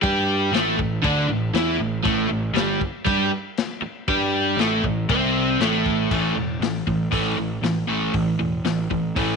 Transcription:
0.02 picked electric bass G2, overdriven electric guitar G3 G4, kick, crash
0.52 picked electric bass A1, overdriven electric guitar A2 A3, snare, crash
0.78 picked electric bass A1, overdriven electric guitar A2, kick
1.03 picked electric bass D2, overdriven electric guitar D3 D4, kick, crash
1.28 picked electric bass A1, overdriven electric guitar A2
1.54 picked electric bass E2, overdriven electric guitar E3 E4, snare, crash
1.79 picked electric bass A1, overdriven electric guitar A2
2.03 picked electric bass A1, overdriven electric guitar A2 A3, kick, crash
2.29 picked electric bass A1, overdriven electric guitar A2
2.54 picked electric bass G1, overdriven electric guitar G2 G3, snare, crash
2.81 muted overdriven electric guitar stroke, muted picked electric bass stroke, kick
3.05 picked electric bass G2, overdriven electric guitar G3 G4, kick, crash
3.57 snare, crash
3.82 muted picked electric bass stroke, muted overdriven electric guitar stroke
4.08 picked electric bass G2, overdriven electric guitar G3 G4, kick, crash
4.57 picked electric bass A1, overdriven electric guitar A2 A3, snare, crash
4.83 picked electric bass A1, overdriven electric guitar A2, kick
5.09 picked electric bass C2, overdriven electric guitar C3 C4, kick, crash
5.60 picked electric bass A1, overdriven electric guitar A2 A3, snare, crash
5.86 kick
6.11 picked electric bass A1, overdriven electric guitar A2 E3 A3, kick, crash
6.35 picked electric bass E1, overdriven electric guitar A2 E3
6.60 picked electric bass A1, overdriven electric guitar A2 E3, snare, open hi-hat
6.87 picked electric bass A1, overdriven electric guitar A2 E3, kick
7.11 picked electric bass A1, overdriven electric guitar A2 E3 A3, kick, open hi-hat
7.37 picked electric bass A1, overdriven electric guitar A2 E3
7.62 picked electric bass A1, overdriven electric guitar A2 E3, snare, open hi-hat
7.87 picked electric bass A1, overdriven electric guitar A2 E3 A3
8.13 picked electric bass A1, overdriven electric guitar A2 E3, kick, open hi-hat
8.39 picked electric bass E1, overdriven electric guitar A2 E3
8.65 picked electric bass A1, overdriven electric guitar A2 E3, snare, open hi-hat
8.91 picked electric bass A1, overdriven electric guitar A2 E3, kick
9.16 picked electric bass A1, overdriven electric guitar A2 E3 A3, kick, open hi-hat

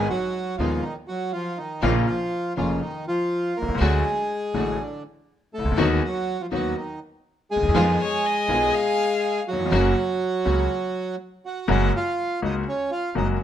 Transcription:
0.10 bandoneon F#3 F#4
0.57 grand piano D#1 D#2 D#3 G#3 B3 G#4, upright bass D#2, bandoneon F3 F4, string section G#3 B3 D#4
0.83 bandoneon D#3 D#4
1.08 bandoneon F#3 F#4
1.33 bandoneon F3 F4
1.57 bandoneon D#3 D#4
1.82 upright bass A#1, grand piano A#1 A#2 C#3 F3 A#3 F4, bandoneon D#3 D#4, string section A#3 C#4 F4
2.06 bandoneon F3 F4
2.56 grand piano F1 F2 C#3 F3 A#3 F4, upright bass F1, bandoneon C#3 C#4, string section A#3 C#4 F4
2.82 bandoneon D#3 D#4
3.07 bandoneon F3 F4
3.57 bandoneon A#3 A#4
3.62 upright bass B1, grand piano B1
3.68 upright bass C2, grand piano C2
3.74 upright bass C#2, grand piano C#2
3.79 upright bass D2, grand piano D2 D3 F#3 A3 F#4, bandoneon G#3 G#4, string section A3 D4 F#4
4.54 upright bass A1, grand piano A1 A2 D3 F#3 A3 F#4, string section A3 D4 F#4
4.81 bandoneon D3 D4
5.54 bandoneon A3 A4
5.58 upright bass C2, grand piano C2
5.65 upright bass C#2, grand piano C#2
5.71 upright bass D2, grand piano D2
5.77 upright bass D#2, grand piano D#2 D#3 F#3 B3 F#4, string section B3 D#4 F#4
5.91 bandoneon G#3 G#4
6.04 bandoneon F#3 F#4
6.41 bandoneon F3 F4
6.51 grand piano D#2 D#3 F#3 B3 F#4, upright bass D#2, bandoneon F#3 F#4, string section B3 D#4 F#4
6.76 bandoneon D#3 D#4
7.51 bandoneon G#3 G#4
7.56 upright bass D2, grand piano D2
7.63 upright bass D#2, grand piano D#2
7.68 upright bass E2, grand piano E2
7.74 upright bass F2, grand piano F2 D#3 F3 G#3 B3 F4, string section G#3 D#4 F4
8.00 violin C#5
8.26 violin D#5
8.48 upright bass B1, grand piano B1 B2 D#3 G#3 B3 F4, string section G#3 D#4 F4
8.74 violin F5
9.48 bandoneon F#3 F#4
9.53 grand piano D#2
9.59 grand piano E2
9.66 grand piano F2
9.72 upright bass F#1, grand piano F#2 C#3 F#3 A#3 F#4, string section A#3 C#4 F#4
10.45 grand piano C#2 C#3 F#3 A#3 F#4, upright bass C#2, string section A#3 C#4 F#4
11.46 bandoneon F#4 F#5
11.68 upright bass F#1, grand piano F#2 C#3 F#3 G#3 A#3 F#4, bandoneon F#4 F#5
11.95 bandoneon F4 F5
12.42 grand piano C#2 C#3 G#3 A#3 F#4, upright bass C#2, bandoneon D#4 D#5
12.68 bandoneon C#4 C#5
12.91 bandoneon F4 F5
13.15 upright bass F#1, grand piano F#2 C#3 F#3 G#3 A#3 F#4, bandoneon D#4 D#5

